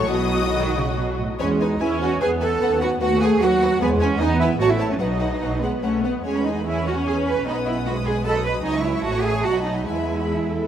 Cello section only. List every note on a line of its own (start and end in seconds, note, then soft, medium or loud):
0.10 0.49 B2 medium
0.54 0.74 D#3 loud
0.75 0.83 C#3 medium
0.97 1.18 B2 medium
1.18 1.26 A2 medium
1.39 1.59 C#4 loud
1.60 1.81 D#4 medium
1.81 2.01 E4 loud
2.01 2.21 F#4 loud
2.21 2.29 G#4 loud
2.42 2.81 A4 loud
2.82 2.90 F#4 loud
3.02 3.21 F#4 loud
3.22 3.41 G#4 loud
3.42 3.80 F#4 loud
3.81 3.88 B3 loud
4.01 4.20 C#4 loud
4.20 4.40 D#4 loud
4.40 4.48 E4 loud
4.60 4.69 F#4 loud
4.71 4.90 E4 medium
4.91 4.95 C#4 medium
5.00 5.60 D#4 medium
5.61 5.82 B3 medium
5.83 6.03 C#4 medium
6.04 6.25 B3 medium
6.25 6.45 C#4 medium
6.46 6.66 D#4 medium
6.67 6.86 E4 medium
6.87 6.95 F#4 medium
7.07 7.15 G#4 medium
7.27 7.47 B4 medium
7.47 7.55 D#4 medium
7.67 7.75 E4 medium
7.86 7.94 F#4 medium
8.06 8.14 G#4 medium
8.25 8.45 A4 loud
8.45 8.53 B4 loud
8.64 8.83 D#4 loud
8.84 9.04 E4 medium
9.03 9.24 F#4 loud
9.23 9.44 G#4 loud
9.43 9.65 F#4 loud
9.64 9.85 D#4 medium
9.86 10.67 E4 medium